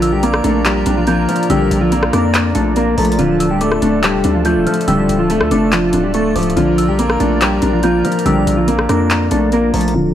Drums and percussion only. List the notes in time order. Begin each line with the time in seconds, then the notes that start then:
0.02 closed hi-hat
0.23 closed hi-hat
0.34 cross-stick
0.44 closed hi-hat
0.65 clap, closed hi-hat
0.86 closed hi-hat
1.07 closed hi-hat
1.29 closed hi-hat
1.36 closed hi-hat
1.43 closed hi-hat
1.50 closed hi-hat
1.71 closed hi-hat
1.92 closed hi-hat
2.03 cross-stick
2.13 cross-stick, closed hi-hat
2.34 clap, closed hi-hat
2.55 closed hi-hat
2.76 closed hi-hat
2.98 closed hi-hat, open hi-hat
3.05 closed hi-hat
3.12 closed hi-hat
3.19 closed hi-hat
3.40 closed hi-hat
3.61 closed hi-hat
3.72 cross-stick
3.82 closed hi-hat
4.03 clap, closed hi-hat
4.24 closed hi-hat
4.45 closed hi-hat
4.67 closed hi-hat
4.74 closed hi-hat
4.81 closed hi-hat
4.88 closed hi-hat
5.09 closed hi-hat
5.30 closed hi-hat
5.41 cross-stick
5.51 closed hi-hat
5.72 clap, closed hi-hat
5.93 closed hi-hat
6.14 closed hi-hat
6.36 closed hi-hat, open hi-hat
6.43 closed hi-hat
6.50 closed hi-hat
6.57 closed hi-hat
6.78 closed hi-hat
6.99 closed hi-hat
7.10 cross-stick
7.20 closed hi-hat
7.41 clap, closed hi-hat
7.62 closed hi-hat
7.83 closed hi-hat
8.05 closed hi-hat
8.12 closed hi-hat
8.19 closed hi-hat
8.26 closed hi-hat
8.47 closed hi-hat
8.68 closed hi-hat
8.79 cross-stick
8.89 cross-stick, closed hi-hat
9.10 clap, closed hi-hat
9.31 closed hi-hat
9.52 closed hi-hat
9.74 closed hi-hat, open hi-hat
9.81 closed hi-hat
9.88 closed hi-hat